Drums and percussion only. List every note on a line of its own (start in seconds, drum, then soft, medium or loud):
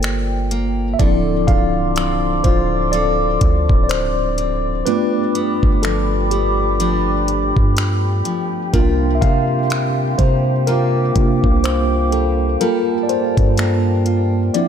0.03 finger snap loud
0.03 closed hi-hat medium
0.51 closed hi-hat medium
0.99 kick loud
0.99 closed hi-hat medium
1.48 kick medium
1.48 closed hi-hat medium
1.96 finger snap loud
1.96 closed hi-hat medium
2.44 kick medium
2.44 closed hi-hat medium
2.93 closed hi-hat medium
3.41 kick medium
3.41 closed hi-hat medium
3.69 kick loud
3.89 finger snap loud
3.89 closed hi-hat medium
4.38 closed hi-hat medium
4.87 closed hi-hat medium
5.35 closed hi-hat medium
5.63 kick medium
5.83 finger snap loud
5.83 closed hi-hat medium
6.31 closed hi-hat medium
6.80 closed hi-hat medium
7.28 closed hi-hat medium
7.57 kick medium
7.77 finger snap loud
7.77 closed hi-hat medium
8.25 closed hi-hat medium
8.74 kick loud
8.74 closed hi-hat medium
9.22 kick medium
9.22 closed hi-hat medium
9.70 finger snap loud
9.70 closed hi-hat medium
10.19 kick medium
10.19 closed hi-hat medium
10.67 closed hi-hat medium
11.16 kick medium
11.16 closed hi-hat medium
11.44 kick loud
11.64 finger snap loud
11.64 closed hi-hat medium
12.12 closed hi-hat medium
12.61 closed hi-hat medium
13.09 closed hi-hat medium
13.37 kick medium
13.37 closed hi-hat medium
13.58 finger snap loud
13.58 closed hi-hat medium
14.06 closed hi-hat medium
14.54 closed hi-hat medium